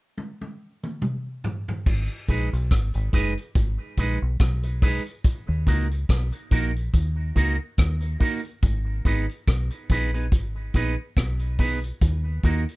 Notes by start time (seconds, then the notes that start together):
0.18 high tom
0.41 high tom
0.83 mid tom
1.02 mid tom
1.44 floor tom
1.68 floor tom
1.86 G#1, kick, crash
2.28 A#1 G#3 D#4 G#4 B4, kick, closed hi-hat
2.53 B1, closed hi-hat
2.71 G#1, kick, cross-stick, closed hi-hat
2.94 G#1, closed hi-hat
3.13 F#1 G#3 D#4 G#4 B4, kick, closed hi-hat
3.38 closed hi-hat
3.55 G#1, kick, closed hi-hat
3.98 A#1 G#3 D#4 G#4 B4, kick, closed hi-hat
4.22 B1
4.39 B1, kick, cross-stick, closed hi-hat
4.63 muted clean electric guitar stroke, closed hi-hat
4.82 G#3 D#4 G#4 B4, kick, open hi-hat
5.07 closed hi-hat
5.24 kick, closed hi-hat
5.49 D#2
5.67 C#2 A#3 D#4 F#4 A#4, kick, closed hi-hat
5.91 closed hi-hat
6.09 B1, kick, cross-stick, closed hi-hat
6.32 closed hi-hat
6.51 A#1 A#3 D#4 F#4 A#4, kick, closed hi-hat
6.76 closed hi-hat
6.94 D#2, kick, closed hi-hat
7.35 C#2 A#3 D#4 F#4 A#4, kick, closed hi-hat
7.78 D#2, kick, cross-stick, closed hi-hat
8.01 muted clean electric guitar stroke, closed hi-hat
8.20 A#3 D#4 F#4 A#4, kick, open hi-hat
8.45 closed hi-hat
8.62 G#1, kick, closed hi-hat
9.05 G#1 B3 D#4 G#4 B4, kick, closed hi-hat
9.29 closed hi-hat
9.48 B1, kick, cross-stick, closed hi-hat
9.70 closed hi-hat
9.90 A#1 B3 D#4 G#4 B4, kick, closed hi-hat
10.14 B3 D#4 G#4 B4, closed hi-hat
10.32 G#1, kick, closed hi-hat
10.74 A#1 B3 D#4 G#4 B4, kick, closed hi-hat
11.16 B1, kick, cross-stick, closed hi-hat
11.39 closed hi-hat
11.59 B3 D#4 G#4 B4, kick, open hi-hat
11.84 closed hi-hat
12.02 D#2, kick, closed hi-hat
12.43 D#2 A#3 D#4 F#4 A#4, kick, closed hi-hat
12.69 closed hi-hat